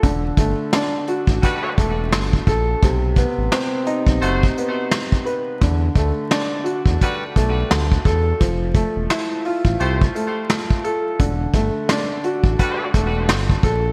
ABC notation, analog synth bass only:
X:1
M:4/4
L:1/16
Q:"Swing 16ths" 1/4=86
K:Flyd
V:1 name="Analog synth bass" clef=bass
E,,,2 G,,, z4 A,,, z2 E,,,2 G,,,2 ^A,,,2 | B,,,3 A,,, z3 B,,, ^F,,,2 z6 | E,,2 D,, z4 E,, z2 B,,,2 D,,2 E,,2 | F,,,3 E,,, z3 A,,, C,,2 z6 |
E,,,2 G,,, z4 A,,, z2 E,,,2 G,,,2 ^A,,,2 |]